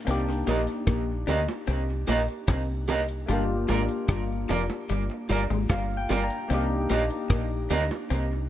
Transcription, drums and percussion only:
0.07 closed hi-hat loud
0.47 closed hi-hat medium
0.47 high bongo soft
0.67 closed hi-hat soft
0.87 kick loud
0.87 cross-stick medium
0.87 closed hi-hat medium
1.27 closed hi-hat medium
1.27 low bongo medium
1.48 closed hi-hat soft
1.48 high bongo medium
1.67 closed hi-hat medium
2.08 closed hi-hat medium
2.08 high bongo medium
2.28 closed hi-hat soft
2.47 kick loud
2.47 cross-stick loud
2.47 closed hi-hat medium
2.47 high bongo medium
2.89 closed hi-hat medium
2.89 low bongo medium
3.08 closed hi-hat medium
3.29 closed hi-hat loud
3.68 closed hi-hat medium
3.68 high bongo medium
3.89 closed hi-hat soft
4.08 kick loud
4.08 cross-stick loud
4.08 closed hi-hat medium
4.49 closed hi-hat medium
4.49 low bongo medium
4.70 closed hi-hat soft
4.70 high bongo medium
4.89 closed hi-hat medium
5.30 closed hi-hat medium
5.30 high bongo medium
5.50 closed hi-hat soft
5.69 kick loud
5.69 cross-stick loud
5.69 closed hi-hat medium
5.69 high bongo medium
6.10 closed hi-hat medium
6.10 low bongo medium
6.30 closed hi-hat medium
6.50 closed hi-hat loud
6.89 closed hi-hat medium
6.89 high bongo soft
7.10 closed hi-hat soft
7.30 kick loud
7.30 cross-stick loud
7.30 closed hi-hat medium
7.70 closed hi-hat medium
7.70 low bongo medium
7.91 closed hi-hat soft
7.91 high bongo medium
8.10 closed hi-hat medium

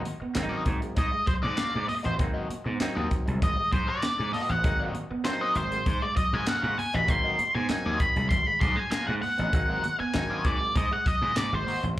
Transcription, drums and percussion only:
0.05 closed hi-hat medium
0.05 muted conga medium
0.35 snare loud
0.35 clap loud
0.35 closed hi-hat loud
0.35 high conga medium
0.66 kick medium
0.66 closed hi-hat medium
0.82 closed hi-hat medium
0.97 kick loud
0.97 closed hi-hat medium
0.97 low conga medium
1.27 kick medium
1.27 closed hi-hat medium
1.57 snare loud
1.57 clap loud
1.57 closed hi-hat loud
1.57 high conga medium
1.89 open hi-hat medium
1.89 high conga medium
2.04 closed hi-hat medium
2.19 kick loud
2.19 closed hi-hat medium
2.19 muted conga soft
2.50 closed hi-hat medium
2.50 muted conga medium
2.80 snare loud
2.80 clap medium
2.80 closed hi-hat loud
2.80 high conga medium
3.11 kick medium
3.11 closed hi-hat medium
3.28 closed hi-hat medium
3.42 kick loud
3.42 closed hi-hat loud
3.42 muted conga soft
3.42 low conga medium
3.72 kick loud
3.72 closed hi-hat medium
3.72 low conga medium
4.02 snare loud
4.02 clap loud
4.02 closed hi-hat loud
4.02 high conga medium
4.34 open hi-hat medium
4.34 high conga medium
4.49 closed hi-hat soft
4.64 kick loud
4.64 closed hi-hat medium
4.64 muted conga soft
4.95 closed hi-hat medium
4.95 muted conga medium
5.25 snare loud
5.25 clap medium
5.25 closed hi-hat medium
5.25 high conga medium
5.55 closed hi-hat medium
5.72 closed hi-hat medium
5.86 kick loud
5.86 closed hi-hat loud
5.86 low conga medium
6.17 kick medium
6.17 closed hi-hat medium
6.46 snare loud
6.46 clap loud
6.46 closed hi-hat loud
6.46 high conga medium
6.79 open hi-hat medium
6.79 high conga medium
6.94 closed hi-hat medium
7.08 kick loud
7.08 closed hi-hat medium
7.08 muted conga soft
7.39 closed hi-hat loud
7.39 muted conga medium
7.69 snare loud
7.69 clap loud
7.69 closed hi-hat loud
7.69 high conga medium
8.00 kick medium
8.00 closed hi-hat medium
8.16 closed hi-hat soft
8.31 kick loud
8.31 closed hi-hat medium
8.31 muted conga soft
8.31 low conga medium
8.61 kick loud
8.61 closed hi-hat medium
8.61 low conga medium
8.91 snare loud
8.91 clap loud
8.91 closed hi-hat loud
8.91 high conga medium
9.23 open hi-hat medium
9.23 high conga medium
9.38 closed hi-hat soft
9.53 kick loud
9.53 closed hi-hat medium
9.53 muted conga soft
9.84 closed hi-hat medium
9.84 muted conga medium
10.14 snare loud
10.14 clap medium
10.14 closed hi-hat loud
10.14 high conga medium
10.44 kick loud
10.44 closed hi-hat medium
10.76 kick loud
10.76 closed hi-hat loud
10.76 muted conga soft
10.76 low conga medium
11.06 kick medium
11.06 closed hi-hat medium
11.36 snare loud
11.36 clap loud
11.36 closed hi-hat loud
11.36 high conga medium
11.67 open hi-hat medium
11.67 high conga medium
11.83 closed hi-hat soft

